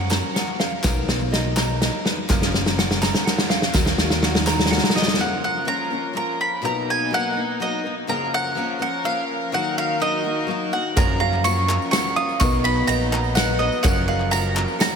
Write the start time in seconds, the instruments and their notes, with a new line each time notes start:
Already playing: fingered electric bass F#2, steel-string acoustic guitar F3 F#3 A#3 C#4, string section F#3 C#4 F#4 A#4, ukulele A#4 F#5
0.10 steel-string acoustic guitar A#3 C#4 A#4, ukulele A#5, snare, clap, tambourine
0.14 steel-string acoustic guitar F3
0.34 steel-string acoustic guitar F3 A#3 C#4 A#4, ukulele F#5, snare, closed hi-hat
0.48 clap
0.59 steel-string acoustic guitar F3 A#3 C#4 A#4, ukulele F5, snare
0.83 fingered electric bass B1, steel-string acoustic guitar B2 F#3 A#3 D#4 A#4, string section A#3 D#4, ukulele A#4, kick, snare, clap, closed hi-hat, tambourine
0.96 tambourine
1.08 fingered electric bass B1, snare
1.20 clap, tambourine
1.31 steel-string acoustic guitar F#3 A#3 D#4 A#4, ukulele D#5, snare, closed hi-hat
1.45 clap
1.56 ukulele A#5, snare, clap, tambourine
1.69 tambourine
1.80 steel-string acoustic guitar F#3 A#3 D#4 A#4, ukulele D#5, snare, closed hi-hat
1.94 clap
2.05 ukulele B4, snare
2.28 fingered electric bass F#1, steel-string acoustic guitar F#2 C#3 F3 A#3 C#4 A#4, string section F3 C#4 A#4, ukulele A#4, kick, snare, clap, closed hi-hat, tambourine
2.42 snare
2.54 snare
2.66 snare, clap, tambourine
2.76 steel-string acoustic guitar F3 A#3 C#4 A#4, ukulele F#5, snare, closed hi-hat
2.90 snare, clap
3.01 steel-string acoustic guitar F3 A#3 C#4 A#4, ukulele A#5, snare, clap, tambourine
3.14 snare, tambourine
3.25 steel-string acoustic guitar F3 A#3 C#4, ukulele F#5, snare, closed hi-hat
3.29 steel-string acoustic guitar A#4
3.38 snare, clap
3.49 steel-string acoustic guitar A#3 C#4 A#4, ukulele F5, snare
3.54 steel-string acoustic guitar F3
3.62 snare
3.73 fingered electric bass D#2, steel-string acoustic guitar D#3 F#3 A#3 D#4 F#4, string section D#3 D#4 F#4, ukulele A#4, kick, snare, clap, tambourine
3.86 snare
3.98 fingered electric bass D#2, snare
4.10 snare
4.22 steel-string acoustic guitar F#3 A#3 D#4 F#4, ukulele F#5, snare, clap
4.35 snare
4.46 ukulele A#5, snare, clap, tambourine
4.58 snare, tambourine
4.66 snare
4.70 steel-string acoustic guitar F#3 A#3 D#4 F#4, ukulele F#5, snare, tambourine
4.78 snare
4.84 snare
4.90 snare
4.95 ukulele D#5, mandolin D#5, snare
5.02 snare
5.07 snare, tambourine
5.14 snare
5.19 steel-string acoustic guitar F#2 C#3 F3 A#3 C#4 A#4, string section C#4 F4 A#4, mandolin F#5
5.44 mandolin F#5
5.65 steel-string acoustic guitar F3 A#3 C#4 A#4, mandolin A#5
5.90 steel-string acoustic guitar F3 A#3 C#4 A#4
6.13 steel-string acoustic guitar F3 A#3 C#4 A#4, mandolin A#5
6.41 mandolin B5
6.62 steel-string acoustic guitar B2 F#3 A#3 D#4 A#4, string section B2 A#3 D#4, mandolin A#5
6.90 mandolin G#5
7.11 steel-string acoustic guitar F#3 A#3 D#4 A#4, mandolin F#5
7.35 steel-string acoustic guitar A#3 D#4 A#4
7.60 steel-string acoustic guitar F#3 A#3 D#4 A#4, mandolin D#5
7.83 steel-string acoustic guitar A#3 D#4 A#4
8.07 steel-string acoustic guitar F#2 C#3 F3 A#3 C#4 A#4, string section F3 C#4 A#4, mandolin A#5
8.34 mandolin F#5
8.55 steel-string acoustic guitar F3 A#3 C#4 A#4
8.79 steel-string acoustic guitar F3 A#3 C#4 A#4, mandolin F#5
9.04 steel-string acoustic guitar F3 A#3 C#4 A#4, mandolin F5
9.52 steel-string acoustic guitar D#3 F#3 A#3 D#4 F#4, string section D#3 D#4 F#4, mandolin F#5
9.78 mandolin F5
10.00 steel-string acoustic guitar F#3 A#3 D#4 F#4, mandolin D#5
10.23 steel-string acoustic guitar A#3 D#4 F#4
10.47 steel-string acoustic guitar F#3 A#3 D#4 F#4
10.72 steel-string acoustic guitar A#3 D#4 F#4, mandolin F#5
10.96 upright piano F#1 F#2 F#3 C#4 F4 A#4 C#5, steel-string acoustic guitar F#2 C#3 F3 A#3 C#4 A#4, fingered electric bass F#2, string section F3 C#4, ukulele A#4, mandolin A#5, kick, clap, ride, tambourine
11.20 upright piano F#3 C#4 F4 A#4 C#5, ukulele F5, mandolin A#5
11.33 clap
11.44 steel-string acoustic guitar F3 A#3 C#4 A#4, upright piano F#3 C#4 F4 A#4 C#5, ukulele F#5, mandolin C#6, ride, tambourine
11.57 tambourine
11.68 steel-string acoustic guitar F3 A#3 C#4 A#4, upright piano F#3 C#4 F4 A#4 D#5, ukulele A#5, clap
11.82 tambourine
11.91 steel-string acoustic guitar F3 A#3 C#4 A#4, upright piano F#3 C#4 F4 A#4 C#5, ukulele F#5, mandolin C#6, snare, ride, tambourine
12.16 upright piano F#3 C#4 F4 A#4 D#5, ukulele F5, mandolin D#6, clap
12.29 tambourine
12.40 fingered electric bass B1, steel-string acoustic guitar B2 F#3 B3 D#4 A#4, upright piano F#3 B3 D#4 A#4 D#5, string section F#3 B3 D#4, ukulele A#4, mandolin C#6, kick, clap, ride, tambourine
12.53 clap
12.63 upright piano F#3 B3 D#4 A#4 D#5, ukulele B4, mandolin B5, ride
12.77 clap
12.86 fingered electric bass A#1, upright piano F#3 B3 D#4 A#4 F5, steel-string acoustic guitar F#3 B3 D#4 A#4, ukulele D#5, mandolin A#5, ride, tambourine
13.00 tambourine
13.11 upright piano F#3 B3 D#4 A#4 F#5, steel-string acoustic guitar D#4 A#4, ukulele A#5, clap, tambourine
13.15 steel-string acoustic guitar B3
13.24 tambourine
13.35 steel-string acoustic guitar F#3 B3 D#4 A#4, upright piano F#3 B3 D#4 A#4 F5, ukulele D#5, mandolin F#5, snare, ride, tambourine
13.59 upright piano F#3 B3 D#4 A#4 C#5, steel-string acoustic guitar B3 D#4 A#4, ukulele B4, mandolin D#5, clap
13.72 tambourine
13.83 upright piano F#1 F#2 F#3 C#4 F4 A#4 C#5, fingered electric bass F#1, steel-string acoustic guitar F#2 C#3 F3 A#3 C#4 A#4, string section F3 C#4 A#4, ukulele A#4, mandolin F#5, kick, clap, ride, tambourine
13.96 clap
14.08 upright piano F#3 C#4 F4 A#4 D#5, ukulele F5, mandolin F#5
14.20 clap
14.31 steel-string acoustic guitar F3 A#3 C#4 A#4, upright piano F#3 C#4 F4 A#4 D#5, ukulele F#5, mandolin A#5, ride, tambourine
14.44 tambourine
14.55 steel-string acoustic guitar F3 A#3 C#4 A#4, upright piano F#3 C#4 F4 A#4 C#5, ukulele A#5, clap
14.68 tambourine
14.79 steel-string acoustic guitar F3 A#3 C#4 A#4, upright piano F#3 C#4 F4 D#5, ukulele F#5, mandolin A#5, snare, ride, tambourine